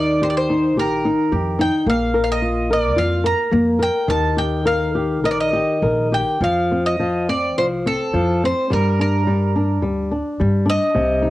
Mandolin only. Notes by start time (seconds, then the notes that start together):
Already playing: D5
0.23 C5
0.30 D5
0.37 C5
0.79 A#4
1.61 G5
1.90 F5
2.24 F5
2.32 D#5
2.73 D5
2.98 F5
3.26 A#5
3.83 G5
4.10 A5
4.38 G5
4.67 F5
5.25 D#5
5.31 D5
5.40 D#5
6.14 G5
6.44 F5
6.86 D#5
7.29 D5
7.58 C5
7.87 A4
8.45 C5
8.73 A#4
9.01 A#4
10.69 D#5